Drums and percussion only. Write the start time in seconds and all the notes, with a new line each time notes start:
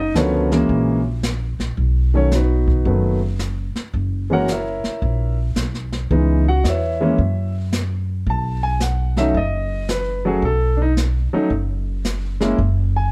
0.15 snare, hi-hat pedal
0.52 snare
0.69 brush sweep, kick
1.23 snare, hi-hat pedal
1.60 snare
1.77 brush sweep, kick
2.32 snare, hi-hat pedal
2.68 kick
2.85 brush sweep, kick
3.39 snare, hi-hat pedal
3.76 snare
3.94 brush sweep, kick
4.48 snare, hi-hat pedal
4.84 snare
5.02 brush sweep, kick
5.56 snare, hi-hat pedal
5.74 snare
5.92 snare
6.11 brush sweep, kick
6.65 snare, hi-hat pedal
7.19 brush sweep, kick
7.73 snare, hi-hat pedal
8.27 brush sweep, kick
8.80 snare, hi-hat pedal
9.17 snare
9.35 brush sweep, kick
9.89 snare, hi-hat pedal
10.43 brush sweep, kick
10.97 snare, hi-hat pedal
11.51 brush sweep, kick
12.05 snare, hi-hat pedal
12.41 snare
12.58 brush sweep, kick